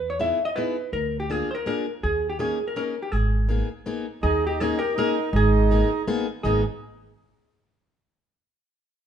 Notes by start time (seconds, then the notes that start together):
Already playing: E2
0.10 C#5
0.19 B3 D#4 E4 G#4 E5
0.45 D#5
0.56 B3 D#4 E4 G#4 B4
0.93 D2 A#4
1.20 G4
1.30 A#3 D4 F4 G#4
1.51 A#4 C5
1.66 A#3 D4 F4 G#4 A#4
2.03 D#2 G#4
2.30 G4
2.39 A#3 C#4 D#4 G#4
2.68 A#4
2.76 A#3 C#4 D#4 G#4 A#4
3.02 G4
3.12 G#1 G#4
3.49 A#3 B3 D#4 G#4
3.86 A#3 B3 D#4 G#4
4.23 D#2 D#4 G#4
4.46 D#4 G4
4.60 A#3 C#4 D#4 G#4
4.77 G4 A#4
4.95 A#3 C#4 D#4 A#4
4.99 G#4
5.32 G#1 D#4 G#4
5.71 A#3 B3 D#4 G#4
6.08 A#3 B3 D#4 G#4
6.43 G#1 A#3 B3 D#4 G#4